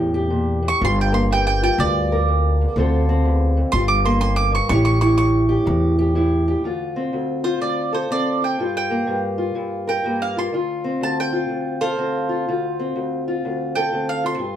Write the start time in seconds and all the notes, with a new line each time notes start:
Already playing: E2 A2 E4 G4
0.14 G4
0.30 A#2
0.62 A2
0.68 C#6
0.81 G1 G2 F4 C6
1.01 G5
1.12 A#3 C6
1.31 G2 G5
1.47 G5
1.63 F4 G5
1.78 D2 G2 D5
2.12 A#4
2.28 F2
2.61 E2
2.76 D2 D3 C4 F4 A4
3.09 C4
3.25 E2
3.57 F2
3.72 G1 G2 F4 C6
3.88 D6
4.05 A#3 C6
4.21 F2 C6
4.36 D6
4.51 G2 C#6
4.69 A1 A2 C#4 E4 G4 C#6
4.85 C#6
5.01 E4 C#6
5.17 A2 C#6
5.49 G4
5.65 E2 A2
5.99 G4
6.15 A2 E4
6.48 G4
6.64 D2 F4
6.96 C4
7.13 D2
7.44 F4 C5
7.61 D2 D5
7.93 A4 C5
8.10 D2 C4 D5
8.42 F4 G5
8.59 G2 F4
8.77 G5
8.90 A#3
9.07 G2
9.38 F4
9.55 G2
9.87 A#4 G5
10.04 G2 A#3
10.22 F5
10.37 F4 C6
10.52 D2 F4
10.84 C4
11.01 D2 A5
11.20 G5
11.32 F4
11.49 D2
11.81 A4 C5 F5
11.98 D2 C4
12.29 F4
12.48 D2 F4
12.80 C4
12.96 D2
13.28 F4
13.45 D2
13.75 A4 G5
13.92 D2 C4
14.09 F5
14.24 F4 C6
14.38 G2 F4